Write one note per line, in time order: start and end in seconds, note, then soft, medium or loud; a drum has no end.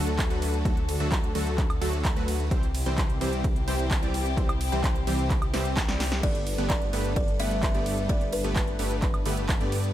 0.00 0.28 D2 medium
0.00 0.28 D3 medium
0.00 2.48 D3 medium
0.00 0.28 F#3 medium
0.00 0.28 A3 medium
0.00 2.48 D4 medium
0.00 0.28 F#4 medium
0.00 2.48 F#4 medium
0.00 0.28 A4 loud
0.00 2.48 A4 medium
0.07 closed hi-hat soft
0.19 kick loud
0.19 clap loud
0.19 closed hi-hat medium
0.19 ride medium
0.30 0.63 D2 loud
0.30 0.62 D3 medium
0.30 0.62 F#3 medium
0.30 0.62 A3 medium
0.30 0.62 F#4 medium
0.30 0.62 B4 medium
0.30 closed hi-hat soft
0.42 open hi-hat loud
0.42 ride medium
0.54 closed hi-hat soft
0.65 0.98 D2 medium
0.65 0.80 D3 medium
0.65 0.80 F#3 medium
0.65 0.80 A3 medium
0.65 0.80 F#4 medium
0.65 0.80 A4 medium
0.65 kick loud
0.65 closed hi-hat medium
0.65 ride medium
0.77 closed hi-hat soft
0.89 open hi-hat loud
0.89 ride medium
1.00 1.33 D2 loud
1.00 1.32 D3 medium
1.00 1.32 F#3 medium
1.00 1.32 A3 medium
1.00 1.32 F#4 medium
1.00 1.32 A4 medium
1.00 closed hi-hat soft
1.12 kick loud
1.12 clap loud
1.12 closed hi-hat medium
1.12 ride medium
1.24 closed hi-hat soft
1.35 1.79 D2 loud
1.35 1.59 D3 medium
1.35 1.59 F#3 medium
1.35 1.59 A3 medium
1.35 1.59 F#4 medium
1.35 1.59 A4 loud
1.35 open hi-hat loud
1.35 ride medium
1.47 closed hi-hat soft
1.58 kick loud
1.58 clap medium
1.58 closed hi-hat medium
1.58 ride medium
1.70 closed hi-hat soft
1.70 high woodblock medium
1.81 2.14 D2 loud
1.81 2.14 D3 medium
1.81 2.14 F#3 medium
1.81 2.14 A3 medium
1.81 2.14 F#4 medium
1.81 2.14 A4 loud
1.81 open hi-hat loud
1.81 ride medium
1.93 closed hi-hat soft
2.05 kick loud
2.05 clap loud
2.05 closed hi-hat medium
2.05 ride medium
2.16 2.49 D2 medium
2.16 2.48 D3 medium
2.16 2.48 F#3 medium
2.16 2.49 A3 medium
2.16 2.48 F#4 medium
2.16 2.48 B4 medium
2.16 closed hi-hat soft
2.28 open hi-hat loud
2.28 ride medium
2.40 closed hi-hat soft
2.51 2.84 C2 loud
2.51 6.20 C3 medium
2.51 2.66 E3 medium
2.51 2.66 G3 medium
2.51 2.66 C4 medium
2.51 6.20 C4 medium
2.51 6.20 E4 medium
2.51 2.66 G4 medium
2.51 6.20 G4 medium
2.51 2.66 C5 medium
2.51 kick loud
2.51 closed hi-hat medium
2.51 ride medium
2.63 closed hi-hat soft
2.75 open hi-hat loud
2.75 ride medium
2.86 3.19 C2 loud
2.86 3.18 E3 medium
2.86 3.18 G3 medium
2.86 3.18 C4 medium
2.86 3.18 G4 medium
2.86 3.18 C5 medium
2.86 closed hi-hat soft
2.98 kick loud
2.98 clap loud
2.98 closed hi-hat medium
2.98 ride medium
3.10 closed hi-hat soft
3.21 3.65 C2 loud
3.21 3.45 E3 medium
3.21 3.45 G3 medium
3.21 3.45 C4 medium
3.21 3.45 G4 medium
3.21 3.45 C5 loud
3.21 open hi-hat loud
3.21 ride medium
3.33 closed hi-hat soft
3.44 kick loud
3.44 closed hi-hat medium
3.44 ride medium
3.56 closed hi-hat soft
3.68 4.00 C2 medium
3.68 4.00 E3 medium
3.68 4.00 G3 medium
3.68 4.00 C4 medium
3.68 4.00 G4 medium
3.68 4.00 C5 loud
3.68 open hi-hat loud
3.68 ride medium
3.79 closed hi-hat soft
3.91 kick loud
3.91 clap loud
3.91 closed hi-hat medium
3.91 ride medium
4.02 4.35 C2 loud
4.02 4.35 E3 medium
4.02 4.35 G3 medium
4.02 4.35 C4 medium
4.02 4.35 G4 medium
4.02 4.35 D5 medium
4.02 closed hi-hat soft
4.14 open hi-hat loud
4.14 ride medium
4.26 closed hi-hat soft
4.37 4.70 C2 loud
4.37 4.52 E3 medium
4.37 4.52 G3 medium
4.37 4.52 C4 medium
4.37 4.52 G4 medium
4.37 4.52 C5 medium
4.37 kick loud
4.37 closed hi-hat medium
4.37 ride medium
4.49 closed hi-hat soft
4.49 high woodblock medium
4.61 open hi-hat loud
4.61 ride medium
4.72 5.05 C2 loud
4.72 5.04 E3 medium
4.72 5.04 G3 medium
4.72 5.04 C4 medium
4.72 5.04 G4 medium
4.72 5.04 C5 medium
4.72 closed hi-hat soft
4.84 kick loud
4.84 clap loud
4.84 closed hi-hat medium
4.84 ride medium
4.96 closed hi-hat soft
5.07 5.51 C2 loud
5.07 5.31 E3 medium
5.07 5.31 G3 medium
5.07 5.31 C4 medium
5.07 5.31 G4 medium
5.07 5.31 C5 medium
5.07 open hi-hat loud
5.07 ride medium
5.19 closed hi-hat soft
5.30 kick loud
5.30 clap medium
5.30 closed hi-hat medium
5.30 ride medium
5.42 closed hi-hat soft
5.42 high woodblock medium
5.54 5.86 C2 loud
5.54 5.86 E3 medium
5.54 5.86 G3 medium
5.54 5.86 C4 medium
5.54 5.86 G4 medium
5.54 5.86 C5 loud
5.54 snare medium
5.54 open hi-hat loud
5.54 ride medium
5.65 closed hi-hat soft
5.77 kick loud
5.77 snare medium
5.77 clap loud
5.77 closed hi-hat medium
5.77 ride medium
5.88 6.21 C2 medium
5.88 6.21 E3 medium
5.88 6.21 G3 medium
5.88 6.21 C4 medium
5.88 6.21 G4 medium
5.88 6.21 D5 medium
5.88 snare medium
5.88 closed hi-hat soft
6.00 snare loud
6.00 open hi-hat loud
6.00 ride medium
6.12 snare medium
6.23 6.56 G1 loud
6.23 6.38 D3 medium
6.23 9.92 G3 medium
6.23 6.38 A3 medium
6.23 6.38 B3 medium
6.23 9.92 D4 medium
6.23 6.38 G4 medium
6.23 9.92 A4 medium
6.23 9.93 B4 medium
6.23 6.38 B4 medium
6.23 6.69 D5 loud
6.23 kick loud
6.23 closed hi-hat medium
6.23 crash medium
6.23 ride medium
6.35 closed hi-hat soft
6.47 open hi-hat loud
6.47 ride medium
6.58 6.91 G1 loud
6.58 6.90 D3 medium
6.58 6.90 A3 medium
6.58 6.90 B3 medium
6.58 6.90 G4 medium
6.58 6.90 B4 medium
6.58 closed hi-hat soft
6.70 7.15 D5 loud
6.70 kick loud
6.70 clap loud
6.70 closed hi-hat medium
6.70 ride medium
6.82 closed hi-hat soft
6.93 7.37 G1 loud
6.93 7.17 D3 medium
6.93 7.17 A3 medium
6.93 7.17 B3 medium
6.93 7.17 G4 medium
6.93 7.17 B4 loud
6.93 open hi-hat loud
6.93 ride medium
7.05 closed hi-hat soft
7.16 7.40 D5 loud
7.16 kick loud
7.16 closed hi-hat medium
7.16 ride medium
7.28 closed hi-hat soft
7.40 7.72 G1 loud
7.40 7.72 D3 medium
7.40 7.72 A3 medium
7.40 7.72 B3 medium
7.40 7.72 G4 medium
7.40 7.72 B4 loud
7.40 8.12 E5 loud
7.40 open hi-hat loud
7.40 ride medium
7.51 closed hi-hat soft
7.63 kick loud
7.63 clap loud
7.63 closed hi-hat medium
7.63 ride medium
7.74 8.07 G1 loud
7.74 8.07 D3 medium
7.74 8.07 A3 medium
7.74 8.07 B3 medium
7.74 8.07 G4 medium
7.74 8.07 D5 medium
7.74 closed hi-hat soft
7.86 open hi-hat loud
7.86 ride medium
7.98 closed hi-hat soft
8.09 8.42 G1 loud
8.09 8.24 D3 medium
8.09 8.24 A3 medium
8.09 8.24 B3 medium
8.09 8.24 G4 medium
8.09 8.24 B4 medium
8.09 8.34 D5 loud
8.09 kick loud
8.09 closed hi-hat medium
8.09 ride medium
8.21 closed hi-hat soft
8.32 9.68 B4 medium
8.32 open hi-hat loud
8.32 ride medium
8.44 8.77 G1 loud
8.44 8.76 D3 medium
8.44 8.76 A3 medium
8.44 8.76 B3 medium
8.44 8.76 G4 medium
8.44 8.76 B4 medium
8.44 closed hi-hat soft
8.56 kick loud
8.56 clap loud
8.56 closed hi-hat medium
8.56 ride medium
8.67 closed hi-hat soft
8.79 9.23 G1 loud
8.79 9.03 D3 medium
8.79 9.03 A3 medium
8.79 9.03 B3 medium
8.79 9.03 G4 medium
8.79 9.03 B4 loud
8.79 open hi-hat loud
8.79 ride medium
8.91 closed hi-hat soft
9.02 kick loud
9.02 clap medium
9.02 closed hi-hat medium
9.02 ride medium
9.14 closed hi-hat soft
9.14 high woodblock medium
9.26 9.58 G1 loud
9.26 9.58 D3 loud
9.26 9.58 A3 medium
9.26 9.58 B3 medium
9.26 9.58 G4 medium
9.26 9.58 B4 loud
9.26 open hi-hat loud
9.26 ride medium
9.37 closed hi-hat soft
9.49 kick loud
9.49 clap loud
9.49 closed hi-hat medium
9.49 ride medium
9.60 9.93 G2 loud
9.60 9.93 D3 medium
9.60 9.93 A3 medium
9.60 9.93 B3 medium
9.60 9.93 G4 medium
9.60 9.93 D5 medium
9.60 closed hi-hat soft
9.72 open hi-hat loud
9.72 ride medium
9.84 closed hi-hat soft